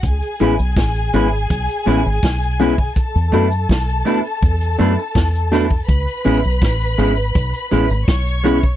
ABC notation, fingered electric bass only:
X:1
M:4/4
L:1/16
Q:1/4=82
K:C#phr
V:1 name="Fingered electric bass" clef=bass
C,, z A,,, B,,, A,,,2 G,,,2 B,,, z A,,, G,,, B,,,4 | z E,, F,,2 B,,,2 z2 E,,2 F,, z E,,4 | C,, z A,,, B,,, A,,,2 G,,,2 B,,, z A,,, G,,, B,,,4 |]